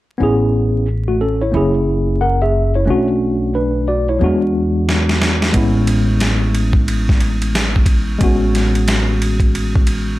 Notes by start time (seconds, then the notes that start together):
0.18 A1 B3 C#4 E4
0.23 G#4
1.08 A3 F#4
1.21 C#4 A4
1.41 E4 C#5
1.52 F#1 A#3 C#4 E4
1.57 G#4
2.21 A#4 F#5
2.42 G#4 E5
2.75 E4 C#5
2.86 B1 A3 C#4 D4
2.90 F#4
3.55 D4 B4
3.88 F#4 D5
4.09 E4 C#5
4.19 E2 F#3 B3 D4
4.24 G#3 F#4
4.89 snare
5.09 snare
5.22 snare
5.42 snare
5.53 A1 G#3 B3 C#4, kick, ride
5.57 E4
5.87 ride
6.20 snare, hi-hat pedal, ride
6.55 ride
6.73 kick
6.88 ride
7.09 kick, snare
7.20 ride
7.42 ride
7.55 snare, hi-hat pedal, ride
7.76 kick
7.86 kick, ride
8.19 A1 G#3 B3 C#4, kick, ride
8.24 F#4
8.55 snare, ride
8.75 ride
8.88 snare, hi-hat pedal, ride
9.22 ride
9.40 kick, ride
9.55 ride
9.76 kick
9.87 ride